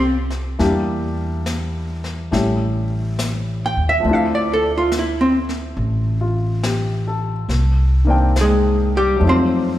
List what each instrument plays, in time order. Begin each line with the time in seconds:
Already playing: upright bass C2, grand piano A3 C4 D4 F4 G4, hollow-body jazz guitar C4
0.30 snare
0.59 upright bass E2, grand piano G3 A#3 D4 E4 G4, brush sweep, snare
1.46 snare, hi-hat pedal
2.04 snare
2.31 upright bass A1, grand piano G3 A3 C#4 E4 G4, brush sweep, snare
3.19 snare, hi-hat pedal
3.66 hollow-body jazz guitar G5
3.77 upright bass D#2
3.89 hollow-body jazz guitar E5
4.00 grand piano F3 A3
4.04 upright bass D2, grand piano C4, brush sweep
4.09 grand piano D4 E4
4.13 hollow-body jazz guitar F5
4.35 hollow-body jazz guitar D5
4.53 hollow-body jazz guitar A4
4.78 hollow-body jazz guitar F4
4.92 snare, hi-hat pedal
4.99 hollow-body jazz guitar E4
5.21 hollow-body jazz guitar C4
5.49 snare
5.77 upright bass A1, brush sweep
6.21 grand piano F4
6.63 grand piano G4, snare, hi-hat pedal
7.07 grand piano A4
7.49 upright bass C2, brush sweep, snare
8.05 grand piano D#3 A#3 C4
8.09 grand piano D4 G5
8.36 snare, hi-hat pedal
8.41 hollow-body jazz guitar G#3 G#4
8.97 hollow-body jazz guitar G3 G4
9.17 grand piano F#3 A3
9.21 upright bass F2, grand piano C4, brush sweep
9.25 hollow-body jazz guitar C4, grand piano D#4 F4
9.29 hollow-body jazz guitar C5